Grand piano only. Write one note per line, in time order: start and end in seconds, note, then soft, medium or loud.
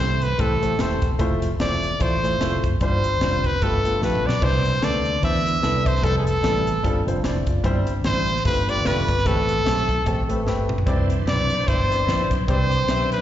0.00 0.17 A2 medium
0.00 0.23 A3 medium
0.00 0.24 E4 medium
0.00 0.24 G4 medium
0.00 0.24 C5 medium
0.38 0.51 A3 medium
0.38 0.52 E4 medium
0.38 0.52 G4 medium
0.38 0.52 C5 medium
0.61 0.71 A3 medium
0.61 0.71 E4 medium
0.61 0.72 G4 medium
0.61 0.72 C5 medium
0.79 1.04 A3 medium
0.79 1.05 E4 medium
0.79 1.05 G4 medium
0.79 1.05 A4 medium
1.19 1.45 A3 loud
1.19 1.45 E4 loud
1.19 1.45 F4 medium
1.19 1.46 C5 loud
1.59 1.85 A3 medium
1.59 1.85 E4 medium
1.59 1.86 F4 medium
1.59 1.86 C5 medium
1.99 2.13 A3 medium
1.99 2.13 E4 medium
1.99 2.14 F4 medium
1.99 2.14 C5 medium
2.23 2.33 A3 medium
2.23 2.33 E4 medium
2.23 2.34 F4 medium
2.23 2.34 C5 medium
2.40 2.66 A3 medium
2.40 2.66 E4 medium
2.40 2.67 F4 medium
2.40 2.67 C5 medium
2.81 3.41 G2 medium
2.81 3.06 G3 medium
2.81 3.07 D4 medium
2.81 3.07 F4 medium
2.81 3.07 C5 medium
3.21 3.47 G3 medium
3.21 3.47 D4 medium
3.21 3.47 F4 medium
3.21 3.48 C5 medium
3.61 4.21 G2 medium
3.61 3.75 A3 medium
3.61 3.75 F4 medium
3.61 3.75 G4 medium
3.61 3.76 B4 medium
3.84 3.94 A3 medium
3.84 3.94 F4 medium
3.84 3.95 G4 soft
3.84 3.95 B4 medium
4.01 4.27 A3 medium
4.01 4.27 F4 medium
4.01 4.28 G4 medium
4.01 4.28 B4 medium
4.41 5.02 C3 medium
4.41 4.67 B3 medium
4.41 4.68 D4 medium
4.41 4.68 E4 medium
4.41 4.68 C5 loud
4.81 5.07 B3 medium
4.81 5.08 D4 medium
4.81 5.08 E4 medium
4.81 5.08 A4 medium
5.22 5.36 B3 medium
5.22 5.36 D4 medium
5.22 5.36 E4 medium
5.22 5.36 C5 medium
5.45 5.55 B3 medium
5.45 5.56 D4 medium
5.45 5.56 E4 medium
5.45 5.56 B4 medium
5.62 5.88 B3 medium
5.62 5.88 D4 medium
5.62 5.89 E4 medium
5.62 5.89 A4 medium
6.02 6.28 G3 medium
6.02 6.29 B3 medium
6.02 6.29 E4 medium
6.02 6.29 A4 medium
6.42 6.69 G3 medium
6.42 6.69 B3 medium
6.42 6.69 E4 medium
6.42 6.70 A4 medium
6.83 7.43 G2 medium
6.83 6.97 G3 medium
6.83 6.97 C4 medium
6.83 6.97 F4 medium
6.83 6.98 A4 medium
7.06 7.16 G3 medium
7.06 7.17 C4 medium
7.06 7.17 F4 medium
7.06 7.17 C5 medium
7.25 7.47 E4 medium
7.25 7.46 C5 medium
7.25 7.46 D5 medium
7.47 7.86 F4 soft
7.47 7.86 D5 medium
7.64 8.24 G2 medium
7.64 7.90 G3 loud
7.64 7.90 C4 medium
7.64 7.90 E4 medium
7.64 7.91 C5 loud
8.05 8.30 G3 medium
8.05 8.30 C4 medium
8.05 8.31 E4 medium
8.05 8.31 C5 medium
8.45 9.05 G2 medium
8.45 8.58 A3 medium
8.45 8.58 F4 medium
8.45 8.59 G4 medium
8.45 8.59 B4 medium
8.68 8.78 A3 medium
8.68 8.78 F4 medium
8.68 8.78 G4 medium
8.68 8.79 B4 medium
8.85 9.10 A3 medium
8.85 9.11 F4 medium
8.85 9.11 G4 medium
8.85 9.11 B4 medium
9.25 9.85 A2 medium
9.25 9.51 A3 medium
9.25 9.51 C4 medium
9.25 9.51 G4 medium
9.25 9.52 B4 medium
9.65 9.91 A3 medium
9.65 9.91 C4 medium
9.65 9.92 G4 medium
9.65 9.92 A4 medium
10.06 10.19 A3 medium
10.06 10.19 C4 medium
10.06 10.20 G4 medium
10.06 10.20 A4 medium
10.28 10.39 A3 medium
10.28 10.39 C4 medium
10.28 10.39 G4 medium
10.28 10.40 B4 medium
10.46 10.72 A3 medium
10.46 10.72 C4 medium
10.46 10.72 G4 medium
10.46 10.73 B4 medium
10.86 11.46 C3 medium
10.86 11.12 C4 loud
10.86 11.12 E4 medium
10.86 11.13 B4 medium
10.86 11.13 D5 loud
11.26 11.52 C4 medium
11.26 11.52 E4 medium
11.26 11.53 B4 medium
11.26 11.53 D5 medium
11.67 11.80 C4 medium
11.67 11.80 E4 medium
11.67 11.81 B4 medium
11.67 11.81 E5 medium
11.89 12.00 C4 medium
11.89 12.00 E4 medium
11.89 12.01 B4 medium
11.89 12.01 D5 medium
12.07 12.33 C4 medium
12.07 12.33 E4 medium
12.07 12.33 B4 medium
12.07 12.34 D5 medium
12.47 13.08 C3 medium
12.47 12.73 C4 medium
12.47 12.74 G4 medium
12.47 12.74 B4 medium
12.47 12.74 D5 medium
12.88 13.14 C4 medium
12.88 13.14 G4 medium
12.88 13.14 B4 medium
12.88 13.15 E5 medium